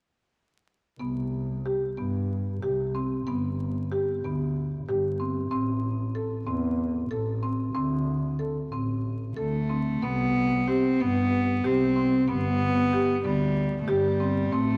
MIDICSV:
0, 0, Header, 1, 4, 480
1, 0, Start_track
1, 0, Tempo, 650759
1, 737, Time_signature, 7, 3, 24, 8
1, 2650, Tempo, 638978
1, 6010, Tempo, 650759
1, 8410, Tempo, 639659
1, 11002, End_track
2, 0, Start_track
2, 0, Title_t, "Marimba"
2, 0, Program_c, 0, 12
2, 734, Note_on_c, 0, 59, 55
2, 992, Note_off_c, 0, 59, 0
2, 1221, Note_on_c, 0, 67, 48
2, 1349, Note_off_c, 0, 67, 0
2, 1455, Note_on_c, 0, 59, 50
2, 1711, Note_off_c, 0, 59, 0
2, 1936, Note_on_c, 0, 67, 50
2, 2064, Note_off_c, 0, 67, 0
2, 2174, Note_on_c, 0, 60, 54
2, 2301, Note_off_c, 0, 60, 0
2, 2410, Note_on_c, 0, 59, 62
2, 2664, Note_off_c, 0, 59, 0
2, 2892, Note_on_c, 0, 67, 53
2, 3021, Note_off_c, 0, 67, 0
2, 3140, Note_on_c, 0, 59, 51
2, 3394, Note_off_c, 0, 59, 0
2, 3622, Note_on_c, 0, 67, 56
2, 3747, Note_off_c, 0, 67, 0
2, 3855, Note_on_c, 0, 60, 49
2, 3982, Note_off_c, 0, 60, 0
2, 4089, Note_on_c, 0, 60, 66
2, 4346, Note_off_c, 0, 60, 0
2, 4572, Note_on_c, 0, 69, 50
2, 4699, Note_off_c, 0, 69, 0
2, 4808, Note_on_c, 0, 60, 58
2, 5065, Note_off_c, 0, 60, 0
2, 5290, Note_on_c, 0, 69, 54
2, 5418, Note_off_c, 0, 69, 0
2, 5530, Note_on_c, 0, 60, 55
2, 5658, Note_off_c, 0, 60, 0
2, 5771, Note_on_c, 0, 60, 63
2, 6028, Note_off_c, 0, 60, 0
2, 6250, Note_on_c, 0, 69, 52
2, 6377, Note_off_c, 0, 69, 0
2, 6492, Note_on_c, 0, 60, 56
2, 6748, Note_off_c, 0, 60, 0
2, 6969, Note_on_c, 0, 69, 55
2, 7099, Note_off_c, 0, 69, 0
2, 7212, Note_on_c, 0, 60, 52
2, 7341, Note_off_c, 0, 60, 0
2, 7455, Note_on_c, 0, 59, 64
2, 7712, Note_off_c, 0, 59, 0
2, 7936, Note_on_c, 0, 67, 52
2, 8063, Note_off_c, 0, 67, 0
2, 8176, Note_on_c, 0, 59, 57
2, 8429, Note_off_c, 0, 59, 0
2, 8653, Note_on_c, 0, 67, 58
2, 8782, Note_off_c, 0, 67, 0
2, 8890, Note_on_c, 0, 60, 56
2, 9020, Note_off_c, 0, 60, 0
2, 9128, Note_on_c, 0, 59, 72
2, 9387, Note_off_c, 0, 59, 0
2, 9619, Note_on_c, 0, 67, 57
2, 9746, Note_off_c, 0, 67, 0
2, 9856, Note_on_c, 0, 59, 58
2, 10110, Note_off_c, 0, 59, 0
2, 10329, Note_on_c, 0, 67, 68
2, 10458, Note_off_c, 0, 67, 0
2, 10572, Note_on_c, 0, 60, 60
2, 10700, Note_off_c, 0, 60, 0
2, 10816, Note_on_c, 0, 60, 76
2, 11002, Note_off_c, 0, 60, 0
2, 11002, End_track
3, 0, Start_track
3, 0, Title_t, "Cello"
3, 0, Program_c, 1, 42
3, 6978, Note_on_c, 1, 57, 59
3, 7455, Note_on_c, 1, 59, 76
3, 7467, Note_off_c, 1, 57, 0
3, 7934, Note_on_c, 1, 60, 66
3, 7945, Note_off_c, 1, 59, 0
3, 8181, Note_on_c, 1, 59, 80
3, 8192, Note_off_c, 1, 60, 0
3, 8663, Note_on_c, 1, 60, 70
3, 8674, Note_off_c, 1, 59, 0
3, 9140, Note_off_c, 1, 60, 0
3, 9145, Note_on_c, 1, 59, 86
3, 9831, Note_off_c, 1, 59, 0
3, 9859, Note_on_c, 1, 55, 76
3, 10253, Note_off_c, 1, 55, 0
3, 10279, Note_on_c, 1, 57, 53
3, 10340, Note_on_c, 1, 55, 71
3, 10351, Note_off_c, 1, 57, 0
3, 10813, Note_on_c, 1, 57, 83
3, 10824, Note_off_c, 1, 55, 0
3, 11002, Note_off_c, 1, 57, 0
3, 11002, End_track
4, 0, Start_track
4, 0, Title_t, "Double bass"
4, 0, Program_c, 2, 43
4, 735, Note_on_c, 2, 36, 64
4, 1353, Note_off_c, 2, 36, 0
4, 1458, Note_on_c, 2, 43, 62
4, 1866, Note_off_c, 2, 43, 0
4, 1936, Note_on_c, 2, 36, 61
4, 2343, Note_off_c, 2, 36, 0
4, 2416, Note_on_c, 2, 31, 63
4, 3029, Note_off_c, 2, 31, 0
4, 3134, Note_on_c, 2, 38, 62
4, 3543, Note_off_c, 2, 38, 0
4, 3612, Note_on_c, 2, 31, 59
4, 4021, Note_off_c, 2, 31, 0
4, 4090, Note_on_c, 2, 33, 72
4, 4705, Note_off_c, 2, 33, 0
4, 4808, Note_on_c, 2, 40, 69
4, 5218, Note_off_c, 2, 40, 0
4, 5290, Note_on_c, 2, 33, 64
4, 5699, Note_off_c, 2, 33, 0
4, 5771, Note_on_c, 2, 38, 74
4, 6383, Note_off_c, 2, 38, 0
4, 6485, Note_on_c, 2, 33, 61
4, 6897, Note_off_c, 2, 33, 0
4, 6969, Note_on_c, 2, 38, 59
4, 7384, Note_off_c, 2, 38, 0
4, 7453, Note_on_c, 2, 36, 71
4, 8067, Note_off_c, 2, 36, 0
4, 8168, Note_on_c, 2, 43, 67
4, 8579, Note_off_c, 2, 43, 0
4, 8652, Note_on_c, 2, 36, 68
4, 9065, Note_off_c, 2, 36, 0
4, 9139, Note_on_c, 2, 31, 71
4, 9753, Note_off_c, 2, 31, 0
4, 9860, Note_on_c, 2, 38, 77
4, 10265, Note_off_c, 2, 38, 0
4, 10331, Note_on_c, 2, 31, 65
4, 10740, Note_off_c, 2, 31, 0
4, 10809, Note_on_c, 2, 33, 74
4, 11002, Note_off_c, 2, 33, 0
4, 11002, End_track
0, 0, End_of_file